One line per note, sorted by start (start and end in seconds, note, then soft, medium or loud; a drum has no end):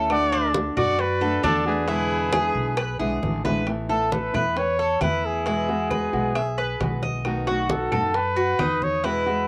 0.00 0.71 D2 medium
0.00 0.31 A4 medium
0.09 0.53 D3 medium
0.09 0.54 A3 medium
0.09 0.54 D4 medium
0.09 0.54 F#4 medium
0.09 0.52 D5 loud
0.09 0.52 F#5 medium
0.09 high bongo medium
0.09 high conga soft
0.09 claves medium
0.32 0.76 D4 medium
0.32 high bongo soft
0.32 high conga soft
0.54 0.98 D3 soft
0.54 0.98 A3 soft
0.54 0.98 D4 medium
0.54 0.99 F#4 medium
0.54 high bongo medium
0.54 high conga loud
0.77 1.40 F#2 medium
0.77 1.20 F#4 medium
0.77 1.02 D5 loud
0.77 1.01 F#5 medium
0.77 high conga soft
0.77 low conga medium
0.77 claves medium
0.99 1.44 B4 loud
0.99 1.44 D5 medium
0.99 muted nylon-string guitar stroke medium
0.99 high bongo medium
0.99 high conga soft
1.21 1.43 A3 medium
1.21 1.43 D4 medium
1.21 1.43 F#4 medium
1.21 1.43 A4 medium
1.21 high bongo soft
1.21 high conga soft
1.43 2.49 E2 medium
1.43 1.65 D3 medium
1.43 1.65 A3 medium
1.43 1.87 D4 medium
1.43 1.64 F#4 medium
1.43 1.65 A4 medium
1.43 1.65 D5 medium
1.43 high bongo soft
1.43 low bongo medium
1.43 high conga medium
1.43 claves medium
1.66 1.88 A3 medium
1.66 1.88 D4 medium
1.66 1.87 F#4 medium
1.66 3.19 G#4 medium
1.66 3.19 B4 medium
1.66 high bongo soft
1.87 2.32 B2 medium
1.87 2.31 D3 medium
1.87 2.32 G#3 medium
1.87 2.32 B3 medium
1.87 2.32 E4 medium
1.87 2.33 E4 medium
1.87 high bongo medium
1.87 high conga soft
2.10 high bongo soft
2.10 high conga soft
2.32 2.76 D3 soft
2.32 2.77 G#3 medium
2.32 2.77 B3 medium
2.32 2.77 E4 medium
2.32 2.76 G#4 medium
2.32 high bongo medium
2.32 high conga loud
2.32 claves medium
2.55 2.97 B1 loud
2.77 2.99 B4 medium
2.77 muted nylon-string guitar stroke medium
2.77 high bongo loud
2.77 high conga soft
2.77 claves medium
2.99 3.21 B1 medium
2.99 3.21 D3 medium
2.99 3.22 G#3 medium
2.99 3.22 B3 medium
2.99 3.21 E4 medium
2.99 3.43 G#4 medium
2.99 high conga soft
3.22 4.28 A1 loud
3.22 3.44 D3 medium
3.22 3.44 G#3 medium
3.22 3.44 B3 medium
3.22 3.43 E4 medium
3.22 high conga medium
3.44 3.66 D3 medium
3.44 3.66 G#3 medium
3.44 3.66 B3 medium
3.44 3.66 E4 medium
3.44 3.66 B4 medium
3.44 low bongo medium
3.44 high conga medium
3.66 3.88 E3 medium
3.66 3.88 A3 medium
3.66 3.89 B3 medium
3.66 3.88 E4 medium
3.66 high bongo medium
3.66 high conga soft
3.66 claves medium
3.89 4.11 A3 medium
3.89 4.11 B3 medium
3.89 4.11 E4 medium
3.89 4.33 A4 medium
3.89 4.11 A4 medium
3.89 high bongo soft
3.89 high conga soft
4.12 4.33 A3 soft
4.12 4.33 B3 soft
4.12 4.32 E4 medium
4.12 4.59 B4 medium
4.12 high bongo medium
4.12 high conga medium
4.33 4.97 E2 medium
4.33 4.56 A3 soft
4.33 4.56 B3 medium
4.33 4.55 E4 medium
4.33 4.78 B4 medium
4.33 high conga soft
4.33 low conga medium
4.33 claves medium
4.57 5.02 C#5 loud
4.57 muted nylon-string guitar stroke medium
4.57 high bongo medium
4.57 high conga soft
4.79 5.01 A4 medium
4.79 high bongo soft
4.79 high conga soft
5.01 6.07 E2 medium
5.01 5.45 E3 soft
5.01 5.46 A3 soft
5.01 5.46 B3 medium
5.01 5.45 E4 medium
5.01 5.46 E4 soft
5.01 5.27 B4 medium
5.01 high bongo medium
5.01 low bongo medium
5.01 high conga medium
5.01 claves medium
5.26 7.04 G#4 medium
5.46 5.68 B2 medium
5.46 5.68 E3 medium
5.46 5.68 G#3 medium
5.46 5.68 B3 medium
5.46 5.90 E4 medium
5.46 5.67 F#4 medium
5.46 high bongo medium
5.46 high conga soft
5.68 5.90 E3 medium
5.68 5.91 G#3 medium
5.68 5.91 B3 medium
5.68 5.90 F#4 medium
5.68 high bongo soft
5.68 high conga soft
5.91 6.12 E3 soft
5.91 6.13 G#3 soft
5.91 6.13 B3 soft
5.91 6.12 F#4 medium
5.91 6.34 B4 medium
5.91 high bongo medium
5.91 high conga medium
5.91 claves medium
6.13 6.76 B1 medium
6.13 6.35 E3 medium
6.13 6.35 G#3 medium
6.13 6.35 B3 medium
6.13 6.35 F#4 medium
6.13 high bongo soft
6.13 high conga soft
6.36 6.57 E5 medium
6.36 muted nylon-string guitar stroke medium
6.36 high bongo medium
6.36 high conga soft
6.36 claves medium
6.58 7.02 B4 medium
6.58 high conga soft
6.80 7.86 B1 loud
6.80 7.24 E3 soft
6.80 7.25 G#3 medium
6.80 7.25 B3 medium
6.80 7.25 F#4 soft
6.80 high bongo medium
6.80 low bongo medium
6.80 high conga medium
7.03 7.46 D#5 medium
7.03 high bongo soft
7.03 high conga medium
7.25 7.46 B2 medium
7.25 7.47 D#3 medium
7.25 7.47 A3 medium
7.25 7.47 B3 medium
7.25 7.46 F#4 medium
7.25 high bongo medium
7.25 high conga soft
7.25 claves medium
7.47 7.68 D#3 medium
7.47 7.69 A3 medium
7.47 7.69 B3 medium
7.47 7.69 F#4 medium
7.47 7.91 F#4 medium
7.47 7.73 F#4 medium
7.47 high bongo soft
7.47 high conga soft
7.70 7.91 D#3 soft
7.70 7.92 A3 medium
7.70 7.91 B3 soft
7.70 7.91 F#4 medium
7.70 8.17 A4 medium
7.70 high bongo medium
7.70 high conga loud
7.92 8.56 F#2 medium
7.92 8.13 D#3 medium
7.92 8.14 A3 medium
7.92 8.14 B3 medium
7.92 8.14 F#4 medium
7.92 8.36 A4 medium
7.92 high bongo soft
7.92 high conga soft
7.92 low conga medium
7.92 claves medium
8.14 8.85 B4 loud
8.14 muted nylon-string guitar stroke medium
8.14 high bongo medium
8.14 high conga soft
8.36 8.59 F#4 medium
8.36 high bongo soft
8.36 high conga soft
8.59 9.48 E2 medium
8.59 9.03 D#3 soft
8.59 9.04 A3 soft
8.59 9.04 B3 soft
8.59 9.03 D#4 medium
8.59 9.04 F#4 medium
8.59 high bongo medium
8.59 low bongo medium
8.59 high conga medium
8.59 claves medium
8.82 9.06 C#5 medium
8.82 high conga medium
9.04 9.26 B2 medium
9.04 9.26 E3 medium
9.04 9.26 G#3 medium
9.04 9.26 B3 medium
9.04 9.47 E4 medium
9.04 9.25 F#4 medium
9.04 9.48 B4 medium
9.04 high bongo medium
9.04 high conga soft
9.26 9.48 E3 soft
9.26 9.48 G#3 medium
9.26 9.48 B3 medium
9.26 9.48 F#4 medium
9.26 high bongo soft
9.26 high conga soft